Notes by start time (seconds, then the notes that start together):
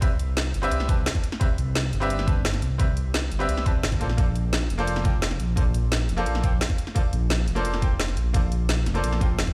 Already playing: C2
0.01 C4 G4 B4 D5 E5, kick, closed hi-hat
0.19 C2, closed hi-hat
0.37 snare, closed hi-hat
0.54 G1, closed hi-hat
0.62 C4 G4 B4 D5 E5, closed hi-hat
0.71 C2, closed hi-hat
0.80 snare
0.88 C4 G4 B4 D5 A5, kick, closed hi-hat
0.97 C2
1.06 snare, closed hi-hat
1.15 kick, closed hi-hat
1.24 closed hi-hat
1.32 snare
1.40 C4 G4 B4 D5 E5, kick, closed hi-hat
1.58 C2, closed hi-hat
1.75 snare, closed hi-hat
1.93 G1, closed hi-hat
2.00 C4 G4 B4 D5 E5, closed hi-hat
2.10 closed hi-hat
2.19 snare
2.26 C4 G4 B4 D5 A5, kick, closed hi-hat
2.45 snare, closed hi-hat
2.54 snare, closed hi-hat
2.62 C2, closed hi-hat
2.78 C4 G4 B4 D5 E5, kick, closed hi-hat
2.97 C2, closed hi-hat
3.14 snare, closed hi-hat
3.31 G1, closed hi-hat
3.39 C4 G4 B4 D5 E5, closed hi-hat
3.49 C2, closed hi-hat
3.57 snare
3.65 C4 G4 B4 D5 A5, kick, closed hi-hat
3.75 C2
3.83 G1, snare, closed hi-hat
3.92 kick, closed hi-hat
4.00 A#1 A#3 F4 A4 C5 D5, closed hi-hat
4.10 snare
4.17 A#3 F4 A4 C5 D5, kick, closed hi-hat
4.36 A#1, closed hi-hat
4.53 snare, closed hi-hat
4.70 F1, closed hi-hat
4.78 A#3 F4 A4 C5 D5, closed hi-hat
4.87 closed hi-hat
4.96 snare
5.04 A#3 F4 A4 C5 G5, kick, closed hi-hat
5.22 snare, closed hi-hat
5.31 snare, closed hi-hat
5.40 A#1, closed hi-hat
5.56 A#3 F4 A4 C5 D5, kick, closed hi-hat
5.74 A#1, closed hi-hat
5.92 snare, closed hi-hat
6.09 F1, closed hi-hat
6.17 A#3 F4 A4 C5 D5, closed hi-hat
6.26 A#1, closed hi-hat
6.35 snare
6.43 A#3 F4 A4 C5 G5, kick, closed hi-hat
6.52 A#1
6.61 snare, closed hi-hat
6.70 kick, closed hi-hat
6.78 closed hi-hat
6.87 snare
6.95 A#3 F4 A4 C5 D5, kick, closed hi-hat
7.13 A#1, closed hi-hat
7.30 snare, closed hi-hat
7.48 F1, closed hi-hat
7.55 A#3 F4 A4 C5 D5, closed hi-hat
7.65 closed hi-hat
7.74 snare
7.81 A#3 F4 A4 C5 G5, kick, closed hi-hat
8.00 snare, closed hi-hat
8.08 snare, closed hi-hat
8.17 A#1, closed hi-hat
8.33 A#3 F4 A4 C5 D5, kick, closed hi-hat
8.52 A#1, closed hi-hat
8.69 snare, closed hi-hat
8.86 F1, snare, closed hi-hat
8.94 A#3 F4 A4 C5 D5, closed hi-hat
9.04 A#1, closed hi-hat
9.13 snare
9.20 A#3 F4 A4 C5 G5, kick, closed hi-hat
9.30 A#1
9.38 F1, snare, closed hi-hat
9.47 kick, closed hi-hat